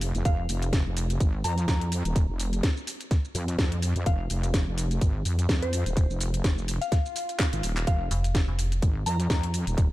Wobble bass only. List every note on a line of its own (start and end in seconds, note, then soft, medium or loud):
0.00 0.13 F1 loud
0.15 0.24 F1 loud
0.25 0.47 F1 loud
0.49 0.84 F1 loud
0.86 1.19 F1 loud
1.20 1.43 G#1 loud
1.44 1.66 F2 medium
1.68 2.03 F2 loud
2.05 2.27 D#1 loud
2.29 2.62 F1 loud
3.35 3.57 F2 loud
3.59 3.94 F2 loud
3.96 4.05 F2 loud
4.06 4.28 F1 loud
4.30 4.65 F1 loud
4.67 5.00 F1 medium
5.01 5.24 G#1 loud
5.25 5.47 F2 loud
5.49 5.84 F2 loud
5.86 6.08 D#1 loud
6.10 6.43 F1 loud
6.44 6.79 F1 loud
7.53 7.62 G#1 loud
7.63 7.85 D#1 loud
7.87 8.09 F1 loud
8.82 9.05 G#1 loud
9.06 9.28 F2 loud
9.30 9.65 F2 loud
9.67 9.89 D#1 loud